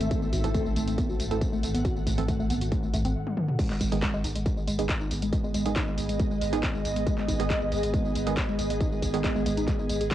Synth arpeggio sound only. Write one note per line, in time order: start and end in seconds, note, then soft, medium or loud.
0.01 0.06 A3 loud
0.11 0.17 A3 loud
0.22 0.26 B3 loud
0.33 0.39 F#4 medium
0.44 0.52 A3 medium
0.55 0.60 A3 medium
0.66 0.71 A3 medium
0.76 0.82 A3 loud
0.88 0.93 A3 loud
0.98 1.01 B3 loud
1.09 1.15 F#4 medium
1.20 1.28 A3 medium
1.31 1.36 A3 medium
1.42 1.47 A3 medium
1.53 1.58 A3 loud
1.63 1.69 A3 loud
1.74 1.78 B3 loud
1.85 1.91 F#4 medium
1.96 2.04 A3 medium
2.07 2.12 A3 medium
2.18 2.23 A3 medium
2.28 2.34 A3 loud
2.40 2.45 A3 loud
2.50 2.54 B3 loud
2.61 2.67 F#4 medium
2.72 2.80 A3 medium
2.83 2.89 A3 medium
2.94 2.97 A3 loud
3.05 3.10 C4 loud
3.59 3.67 G#3 medium
3.70 3.75 G#3 medium
3.81 3.86 G#3 medium
3.92 3.97 G#3 loud
4.02 4.08 G#3 loud
4.14 4.17 G#3 loud
4.24 4.30 D#4 medium
4.35 4.43 G#3 medium
4.46 4.51 G#3 medium
4.57 4.62 G#3 medium
4.68 4.73 G#3 loud
4.79 4.84 G#3 loud
4.89 4.93 G#3 loud
5.01 5.06 D#4 medium
5.11 5.20 G#3 medium
5.22 5.28 G#3 medium
5.33 5.38 G#3 medium
5.44 5.49 G#3 loud
5.55 5.60 G#3 loud
5.66 5.69 G#3 loud
5.76 5.82 D#4 medium
5.88 5.96 G#3 medium
5.98 6.04 G#3 medium
6.09 6.15 G#3 medium
6.20 6.25 G#3 loud
6.31 6.36 G#3 loud
6.42 6.45 G#3 loud
6.53 6.58 D#4 medium
6.63 6.72 G#3 medium
6.75 6.80 G#3 medium
6.85 6.91 G#3 medium
6.96 7.02 G#3 loud
7.07 7.12 G#3 loud
7.18 7.21 G#3 loud
7.29 7.34 D#4 medium
7.40 7.48 G#3 medium
7.50 7.56 G#3 medium
7.62 7.67 G#3 medium
7.72 7.78 G#3 loud
7.83 7.88 G#3 loud
7.94 7.97 G#3 loud
8.05 8.10 D#4 medium
8.15 8.24 G#3 medium
8.27 8.32 G#3 medium
8.37 8.43 G#3 medium
8.49 8.54 G#3 loud
8.59 8.65 G#3 loud
8.70 8.73 G#3 loud
8.81 8.86 D#4 medium
8.92 9.00 G#3 medium
9.02 9.08 G#3 medium
9.14 9.19 G#3 medium
9.24 9.30 G#3 loud
9.36 9.41 G#3 loud
9.46 9.49 G#3 loud
9.57 9.63 D#4 medium
9.68 9.76 G#3 medium
9.79 9.84 G#3 medium
9.89 9.93 G#3 medium
10.01 10.04 G#4 medium
10.11 10.14 F#3 medium